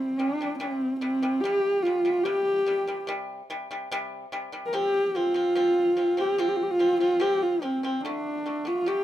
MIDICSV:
0, 0, Header, 1, 3, 480
1, 0, Start_track
1, 0, Tempo, 826446
1, 836, Time_signature, 4, 2, 24, 8
1, 5250, End_track
2, 0, Start_track
2, 0, Title_t, "Horsehead fiddle"
2, 0, Program_c, 0, 110
2, 0, Note_on_c, 0, 60, 86
2, 101, Note_on_c, 0, 62, 91
2, 110, Note_off_c, 0, 60, 0
2, 337, Note_off_c, 0, 62, 0
2, 341, Note_on_c, 0, 60, 87
2, 571, Note_off_c, 0, 60, 0
2, 580, Note_on_c, 0, 60, 93
2, 817, Note_on_c, 0, 67, 102
2, 825, Note_off_c, 0, 60, 0
2, 1060, Note_on_c, 0, 65, 94
2, 1069, Note_off_c, 0, 67, 0
2, 1298, Note_on_c, 0, 67, 100
2, 1307, Note_off_c, 0, 65, 0
2, 1788, Note_off_c, 0, 67, 0
2, 2708, Note_on_c, 0, 70, 76
2, 2758, Note_on_c, 0, 67, 109
2, 2767, Note_off_c, 0, 70, 0
2, 2999, Note_on_c, 0, 65, 102
2, 3007, Note_off_c, 0, 67, 0
2, 3602, Note_on_c, 0, 67, 95
2, 3611, Note_off_c, 0, 65, 0
2, 3716, Note_on_c, 0, 65, 85
2, 3725, Note_off_c, 0, 67, 0
2, 3765, Note_on_c, 0, 67, 83
2, 3774, Note_off_c, 0, 65, 0
2, 3812, Note_on_c, 0, 65, 84
2, 3820, Note_off_c, 0, 67, 0
2, 3847, Note_on_c, 0, 67, 78
2, 3856, Note_off_c, 0, 65, 0
2, 3895, Note_on_c, 0, 65, 106
2, 3904, Note_off_c, 0, 67, 0
2, 4065, Note_off_c, 0, 65, 0
2, 4069, Note_on_c, 0, 65, 100
2, 4189, Note_on_c, 0, 67, 102
2, 4198, Note_off_c, 0, 65, 0
2, 4312, Note_on_c, 0, 65, 92
2, 4321, Note_off_c, 0, 67, 0
2, 4434, Note_on_c, 0, 60, 85
2, 4442, Note_off_c, 0, 65, 0
2, 4666, Note_off_c, 0, 60, 0
2, 4669, Note_on_c, 0, 62, 88
2, 5039, Note_on_c, 0, 65, 91
2, 5048, Note_off_c, 0, 62, 0
2, 5153, Note_on_c, 0, 67, 106
2, 5161, Note_off_c, 0, 65, 0
2, 5250, Note_off_c, 0, 67, 0
2, 5250, End_track
3, 0, Start_track
3, 0, Title_t, "Pipa"
3, 0, Program_c, 1, 105
3, 0, Note_on_c, 1, 48, 92
3, 0, Note_on_c, 1, 55, 97
3, 64, Note_off_c, 1, 48, 0
3, 66, Note_off_c, 1, 55, 0
3, 110, Note_on_c, 1, 48, 60
3, 113, Note_on_c, 1, 55, 72
3, 209, Note_off_c, 1, 48, 0
3, 210, Note_off_c, 1, 55, 0
3, 236, Note_on_c, 1, 48, 65
3, 242, Note_on_c, 1, 55, 68
3, 332, Note_off_c, 1, 48, 0
3, 335, Note_off_c, 1, 55, 0
3, 348, Note_on_c, 1, 48, 87
3, 353, Note_on_c, 1, 55, 90
3, 544, Note_off_c, 1, 48, 0
3, 546, Note_off_c, 1, 55, 0
3, 588, Note_on_c, 1, 48, 69
3, 592, Note_on_c, 1, 55, 80
3, 688, Note_off_c, 1, 48, 0
3, 690, Note_off_c, 1, 55, 0
3, 711, Note_on_c, 1, 48, 77
3, 715, Note_on_c, 1, 55, 80
3, 810, Note_off_c, 1, 48, 0
3, 812, Note_off_c, 1, 55, 0
3, 835, Note_on_c, 1, 48, 87
3, 843, Note_on_c, 1, 55, 100
3, 1028, Note_off_c, 1, 48, 0
3, 1032, Note_off_c, 1, 55, 0
3, 1075, Note_on_c, 1, 48, 61
3, 1083, Note_on_c, 1, 55, 74
3, 1172, Note_off_c, 1, 48, 0
3, 1176, Note_off_c, 1, 55, 0
3, 1190, Note_on_c, 1, 48, 70
3, 1194, Note_on_c, 1, 55, 73
3, 1289, Note_off_c, 1, 48, 0
3, 1292, Note_off_c, 1, 55, 0
3, 1308, Note_on_c, 1, 48, 89
3, 1311, Note_on_c, 1, 55, 95
3, 1505, Note_off_c, 1, 48, 0
3, 1506, Note_off_c, 1, 55, 0
3, 1547, Note_on_c, 1, 48, 66
3, 1553, Note_on_c, 1, 55, 80
3, 1648, Note_off_c, 1, 48, 0
3, 1651, Note_off_c, 1, 55, 0
3, 1670, Note_on_c, 1, 48, 73
3, 1675, Note_on_c, 1, 55, 81
3, 1770, Note_off_c, 1, 48, 0
3, 1772, Note_off_c, 1, 55, 0
3, 1784, Note_on_c, 1, 48, 85
3, 1792, Note_on_c, 1, 55, 105
3, 1983, Note_off_c, 1, 48, 0
3, 1987, Note_off_c, 1, 55, 0
3, 2032, Note_on_c, 1, 48, 77
3, 2035, Note_on_c, 1, 55, 98
3, 2131, Note_off_c, 1, 48, 0
3, 2132, Note_off_c, 1, 55, 0
3, 2153, Note_on_c, 1, 48, 75
3, 2157, Note_on_c, 1, 55, 87
3, 2251, Note_off_c, 1, 48, 0
3, 2252, Note_off_c, 1, 55, 0
3, 2274, Note_on_c, 1, 48, 114
3, 2278, Note_on_c, 1, 55, 125
3, 2468, Note_off_c, 1, 48, 0
3, 2470, Note_off_c, 1, 55, 0
3, 2510, Note_on_c, 1, 48, 82
3, 2514, Note_on_c, 1, 55, 89
3, 2610, Note_off_c, 1, 48, 0
3, 2612, Note_off_c, 1, 55, 0
3, 2627, Note_on_c, 1, 48, 71
3, 2631, Note_on_c, 1, 55, 76
3, 2728, Note_off_c, 1, 48, 0
3, 2730, Note_off_c, 1, 55, 0
3, 2746, Note_on_c, 1, 53, 89
3, 2750, Note_on_c, 1, 60, 98
3, 2943, Note_off_c, 1, 53, 0
3, 2945, Note_off_c, 1, 60, 0
3, 2990, Note_on_c, 1, 53, 64
3, 2996, Note_on_c, 1, 60, 75
3, 3090, Note_off_c, 1, 53, 0
3, 3092, Note_off_c, 1, 60, 0
3, 3103, Note_on_c, 1, 53, 77
3, 3111, Note_on_c, 1, 60, 78
3, 3206, Note_off_c, 1, 53, 0
3, 3210, Note_off_c, 1, 60, 0
3, 3226, Note_on_c, 1, 53, 89
3, 3232, Note_on_c, 1, 60, 89
3, 3423, Note_off_c, 1, 53, 0
3, 3426, Note_off_c, 1, 60, 0
3, 3465, Note_on_c, 1, 53, 70
3, 3471, Note_on_c, 1, 60, 68
3, 3567, Note_off_c, 1, 53, 0
3, 3569, Note_off_c, 1, 60, 0
3, 3584, Note_on_c, 1, 53, 74
3, 3590, Note_on_c, 1, 60, 77
3, 3686, Note_off_c, 1, 53, 0
3, 3689, Note_off_c, 1, 60, 0
3, 3708, Note_on_c, 1, 53, 97
3, 3713, Note_on_c, 1, 60, 99
3, 3903, Note_off_c, 1, 53, 0
3, 3906, Note_off_c, 1, 60, 0
3, 3946, Note_on_c, 1, 53, 64
3, 3950, Note_on_c, 1, 60, 76
3, 4046, Note_off_c, 1, 53, 0
3, 4048, Note_off_c, 1, 60, 0
3, 4068, Note_on_c, 1, 53, 65
3, 4072, Note_on_c, 1, 60, 74
3, 4167, Note_off_c, 1, 53, 0
3, 4169, Note_off_c, 1, 60, 0
3, 4180, Note_on_c, 1, 53, 98
3, 4188, Note_on_c, 1, 60, 94
3, 4379, Note_off_c, 1, 53, 0
3, 4383, Note_off_c, 1, 60, 0
3, 4425, Note_on_c, 1, 53, 70
3, 4429, Note_on_c, 1, 60, 78
3, 4525, Note_off_c, 1, 53, 0
3, 4527, Note_off_c, 1, 60, 0
3, 4549, Note_on_c, 1, 53, 73
3, 4556, Note_on_c, 1, 60, 80
3, 4647, Note_off_c, 1, 53, 0
3, 4651, Note_off_c, 1, 60, 0
3, 4674, Note_on_c, 1, 50, 90
3, 4679, Note_on_c, 1, 57, 101
3, 4865, Note_off_c, 1, 50, 0
3, 4868, Note_off_c, 1, 57, 0
3, 4912, Note_on_c, 1, 50, 59
3, 4916, Note_on_c, 1, 57, 69
3, 5008, Note_off_c, 1, 50, 0
3, 5010, Note_off_c, 1, 57, 0
3, 5024, Note_on_c, 1, 50, 73
3, 5034, Note_on_c, 1, 57, 77
3, 5124, Note_off_c, 1, 50, 0
3, 5129, Note_off_c, 1, 57, 0
3, 5148, Note_on_c, 1, 50, 83
3, 5156, Note_on_c, 1, 57, 94
3, 5250, Note_off_c, 1, 50, 0
3, 5250, Note_off_c, 1, 57, 0
3, 5250, End_track
0, 0, End_of_file